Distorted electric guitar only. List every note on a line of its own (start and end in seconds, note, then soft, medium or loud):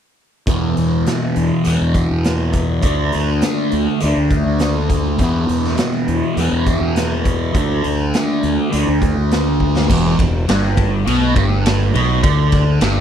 0.47 1.63 E2 medium
0.47 1.65 B2 medium
0.47 1.65 E3 medium
1.64 2.81 E2 medium
1.64 2.82 B2 medium
1.64 2.83 E3 medium
2.83 4.00 D3 medium
2.83 4.00 A3 medium
2.83 4.05 D4 medium
4.01 5.18 D3 medium
4.01 5.19 A3 medium
4.01 5.22 D4 medium
5.19 6.35 E2 medium
5.19 6.36 B2 medium
5.19 6.37 E3 medium
6.37 7.53 E2 medium
6.37 7.54 B2 medium
6.37 7.55 E3 medium
7.54 8.69 D3 medium
7.54 8.71 A3 medium
7.54 8.72 D4 medium
8.70 9.87 D3 medium
8.70 9.88 A3 medium
8.70 9.89 D4 medium
9.89 10.18 E2 medium
10.19 10.43 E2 medium
10.48 11.06 G2 loud
11.05 11.35 B2 medium
11.36 11.93 G2 loud
11.94 12.23 B2 loud
12.23 12.81 D3 medium
12.83 13.01 G2 loud